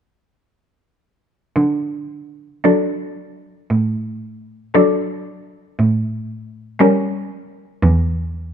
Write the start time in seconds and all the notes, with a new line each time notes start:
1.56 D3
2.64 F#3 D4 A4
3.70 A2
4.74 F#3 D4 A4
5.79 A2
6.79 G3 C#4 A#4
7.83 E2